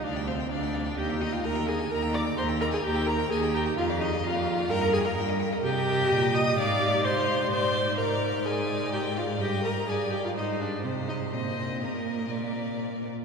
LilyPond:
<<
  \new Staff \with { instrumentName = "Violin" } { \time 4/4 \key ees \major \tempo 4 = 128 d''8 c''8 d''4 g''8 ees''16 f''16 bes''8 aes''8 | bes''8 d'''8 c'''8 bes''16 aes''16 g''8 bes''8 aes''8 g''8 | f''8 ees''8 f''4 bes''8 aes''16 bes''16 r4 | \key bes \mixolydian g''4. ees'''8 d'''4 c'''4 |
c'''4 bes''4 aes''4 g''8 f''8 | g''8 bes''8 aes''8 g''16 f''16 ees''8 d''8 c''8 ees''8 | c''4 bes'2~ bes'8 r8 | }
  \new Staff \with { instrumentName = "Violin" } { \time 4/4 \key ees \major f''16 g''16 f''16 g''16 f''16 g''16 f''16 g''16 ees''16 g''16 ees''16 g''16 ees''16 g''16 ees''16 g''16 | bes''16 g''16 bes''16 g''16 bes''16 g''16 bes''16 g''16 bes''16 g''16 bes''16 g''16 bes''16 g''16 bes''16 g''16 | f''16 d''16 f''16 d''16 f''16 d''16 f''16 d''16 g''16 ees''16 g''16 ees''16 g''16 ees''16 g''16 ees''16 | \key bes \mixolydian ees''2 f''4 f''4 |
d''4 d''4 d''2 | ees''4 d''4 c''4 c''4 | ees''4 ees''4 d''4. r8 | }
  \new Staff \with { instrumentName = "Viola" } { \time 4/4 \key ees \major d'8 c'8 d'4 g'8 ees'16 f'16 bes'8 aes'8 | bes'8 d''8 c''8 bes'16 aes'16 g'8 bes'8 aes'8 g'8 | f'8 ees'8 f'4 bes'8 aes'16 bes'16 r4 | \key bes \mixolydian g'4. ees''8 d''4 c''4 |
c''4 bes'4 aes'4 g'8 f'8 | g'8 bes'8 aes'8 g'16 f'16 ees'8 d'8 c'8 ees'8 | c'4 bes2~ bes8 r8 | }
  \new Staff \with { instrumentName = "Cello" } { \clef bass \time 4/4 \key ees \major d,4 d,4 ees,4 ees,4 | ees,4 ees,4 ees,4 ees,4 | f,4 f,4 g,4 g,4 | \key bes \mixolydian c4 bes,4 aes,2 |
aes,1 | g,2 aes,4 c4 | bes,2 bes,4. r8 | }
>>